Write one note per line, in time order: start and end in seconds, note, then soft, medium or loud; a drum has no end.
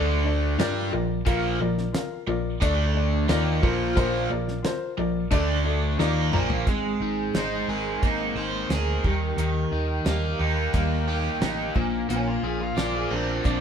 0.00 0.55 D2 medium
0.00 0.58 D3 loud
0.00 0.58 A3 medium
0.00 0.18 D4 loud
0.00 0.58 D4 loud
0.00 0.19 A4 loud
0.00 0.19 D5 loud
0.24 0.52 D4 medium
0.24 0.52 A4 medium
0.24 0.53 D5 medium
0.58 0.90 G2 medium
0.58 0.92 G3 medium
0.58 0.92 D4 medium
0.58 0.86 F4 loud
0.58 0.92 G4 loud
0.58 0.86 A#4 loud
0.58 0.86 D5 loud
0.58 snare loud
0.58 closed hi-hat medium
0.92 1.24 A#1 medium
0.92 1.20 A#2 medium
0.92 1.20 F3 medium
0.92 1.19 F4 medium
0.92 1.19 A#4 medium
0.92 1.20 D5 medium
1.25 1.58 A#1 medium
1.25 1.59 A#2 medium
1.25 1.59 F3 loud
1.25 1.59 A#3 loud
1.25 1.53 F4 loud
1.25 1.53 A#4 medium
1.25 1.54 F5 loud
1.25 kick loud
1.25 closed hi-hat medium
1.60 1.92 A#1 medium
1.60 1.87 A#2 medium
1.60 1.87 F3 medium
1.60 1.87 F4 medium
1.60 1.87 A#4 medium
1.60 1.88 D5 loud
1.78 snare soft
1.92 2.20 F4 medium
1.92 2.21 A#4 medium
1.92 2.21 F5 medium
1.92 snare loud
1.92 closed hi-hat medium
2.27 2.59 A#1 medium
2.27 2.55 A#2 medium
2.27 2.55 F3 medium
2.27 2.54 F4 medium
2.27 2.55 A#4 medium
2.27 2.55 D5 medium
2.61 3.25 D2 medium
2.61 3.28 D3 loud
2.61 3.28 A3 loud
2.61 2.88 D4 loud
2.61 3.28 D4 loud
2.61 2.89 A4 loud
2.61 2.89 D5 loud
2.61 kick loud
2.61 closed hi-hat medium
2.94 3.22 D4 medium
2.94 3.22 A4 medium
2.94 3.23 D5 medium
3.28 3.60 D#2 medium
3.28 3.62 D#3 medium
3.28 3.62 A#3 medium
3.28 3.62 D#4 medium
3.28 3.55 F4 loud
3.28 3.56 A#4 medium
3.28 3.56 D5 loud
3.28 snare loud
3.28 closed hi-hat medium
3.61 3.94 A#1 medium
3.61 3.94 A#2 medium
3.61 3.95 F3 medium
3.61 3.95 A#3 loud
3.61 3.89 F4 medium
3.61 3.89 A#4 medium
3.61 3.90 C5 medium
3.61 kick loud
3.95 4.28 A#1 medium
3.95 4.29 A#2 medium
3.95 4.29 F3 medium
3.95 4.29 A#3 medium
3.95 4.22 F4 loud
3.95 4.23 A#4 medium
3.95 4.23 C5 loud
3.95 kick loud
3.95 closed hi-hat medium
4.29 4.62 A#1 medium
4.29 4.57 A#2 medium
4.29 4.57 F3 medium
4.29 4.57 F4 medium
4.29 4.57 A#4 medium
4.29 4.57 D5 medium
4.48 snare soft
4.63 4.90 F4 medium
4.63 4.91 A#4 medium
4.63 4.91 C5 medium
4.63 snare loud
4.63 closed hi-hat medium
4.97 5.29 A#1 medium
4.97 5.25 A#2 medium
4.97 5.25 F3 medium
4.97 5.24 F4 medium
4.97 5.25 A#4 medium
4.97 5.25 D5 medium
5.31 5.95 D2 medium
5.31 5.98 D3 medium
5.31 5.98 A3 loud
5.31 5.58 D4 loud
5.31 5.98 D4 loud
5.31 5.58 A4 loud
5.31 5.59 D5 loud
5.31 kick loud
5.31 closed hi-hat medium
5.64 5.91 D4 medium
5.64 5.92 A4 medium
5.64 5.92 D5 medium
5.98 6.30 D#2 loud
5.98 6.32 D#3 medium
5.98 6.32 A#3 medium
5.98 6.32 D#4 medium
5.98 6.26 F4 loud
5.98 6.26 A#4 loud
5.98 6.27 D5 loud
5.98 snare medium
6.32 6.64 A#1 medium
6.32 6.66 A#2 medium
6.32 6.66 F3 medium
6.32 6.66 A#3 loud
6.32 6.60 F4 medium
6.32 6.60 A#4 medium
6.32 6.60 D5 medium
6.32 mid tom medium
6.50 floor tom medium
6.67 6.94 G#1 medium
6.67 7.32 G#3 medium
6.67 8.36 G#3 medium
6.67 7.34 C4 medium
6.67 7.35 D#4 medium
6.67 7.36 A#4 medium
6.67 kick medium
6.67 closed hi-hat medium
7.00 7.27 G#1 medium
7.00 8.36 D#4 medium
7.33 7.61 G#1 medium
7.33 8.02 G#3 medium
7.33 8.02 C4 medium
7.33 8.01 D#4 medium
7.33 8.02 D#4 medium
7.33 8.05 A#4 medium
7.33 9.05 C5 medium
7.33 snare medium
7.33 closed hi-hat medium
7.68 7.95 G#1 medium
7.68 8.69 G#4 medium
7.68 8.71 A#4 medium
8.03 8.30 G#1 medium
8.03 8.68 G#3 medium
8.03 10.73 A#3 medium
8.03 8.69 C4 medium
8.03 9.04 D#4 medium
8.03 8.70 D#4 medium
8.03 8.72 A#4 medium
8.03 kick medium
8.03 closed hi-hat medium
8.35 8.62 G#1 medium
8.35 9.04 D#4 medium
8.35 9.04 C5 medium
8.69 8.96 D2 medium
8.69 9.03 G#3 medium
8.69 9.04 C4 medium
8.69 9.04 D#4 medium
8.69 9.04 G#4 medium
8.69 10.40 A#4 medium
8.69 9.02 A#4 medium
8.69 snare loud
8.69 closed hi-hat medium
9.03 9.31 D#2 medium
9.03 9.38 D#3 medium
9.03 10.06 D#3 soft
9.03 10.05 G3 medium
9.03 10.05 A#3 medium
9.03 10.06 G4 medium
9.03 10.08 A#4 medium
9.03 kick medium
9.37 9.64 D#2 medium
9.37 11.08 D#3 medium
9.37 closed hi-hat medium
9.71 9.98 D#2 medium
9.71 11.07 D#4 medium
10.05 10.32 D#2 medium
10.05 10.73 G3 medium
10.05 10.73 A#3 medium
10.05 10.74 G4 medium
10.05 10.75 A#4 medium
10.05 11.75 D#5 medium
10.05 snare loud
10.05 closed hi-hat medium
10.39 10.66 D#2 medium
10.39 11.40 D#4 medium
10.39 11.41 G4 medium
10.73 11.27 D#2 medium
10.73 11.41 D#3 medium
10.73 11.40 G3 medium
10.73 11.39 A#3 medium
10.73 11.75 A#3 medium
10.73 11.41 G4 medium
10.73 11.42 A#4 medium
10.73 kick medium
10.73 closed hi-hat medium
11.08 11.76 D#4 medium
11.08 11.75 G4 medium
11.40 11.68 A1 medium
11.40 11.75 G3 medium
11.40 11.75 A#3 medium
11.40 11.75 D#4 medium
11.40 11.75 G4 medium
11.40 11.74 G4 medium
11.40 11.74 A#4 medium
11.40 snare loud
11.40 closed hi-hat medium
11.74 12.02 A#1 medium
11.74 12.08 A#2 medium
11.74 12.75 A#3 soft
11.74 12.09 A#3 medium
11.74 12.76 D4 medium
11.74 12.78 F4 medium
11.74 12.78 C5 medium
11.74 kick loud
12.09 12.36 A#1 medium
12.09 13.61 A#2 medium
12.09 13.61 A#3 medium
12.09 12.26 C#4 medium
12.09 closed hi-hat medium
12.28 12.43 F4 medium
12.43 12.70 A#1 medium
12.43 13.61 F4 medium
12.43 12.60 G#4 medium
12.61 12.93 F4 medium
12.76 13.03 A#1 medium
12.76 13.43 A#3 medium
12.76 13.44 D4 medium
12.76 13.45 F4 medium
12.76 13.45 C5 medium
12.76 13.61 D5 medium
12.76 snare loud
12.76 closed hi-hat soft
12.96 13.11 G#4 medium
13.11 13.38 A#1 medium
13.11 13.61 C4 medium
13.11 13.61 D4 medium
13.11 13.61 A#4 medium
13.44 13.61 A#1 medium
13.44 13.61 A#3 medium
13.44 13.61 C4 medium
13.44 13.61 D4 medium
13.44 13.61 F4 medium
13.44 13.61 C5 medium
13.44 kick loud
13.44 closed hi-hat soft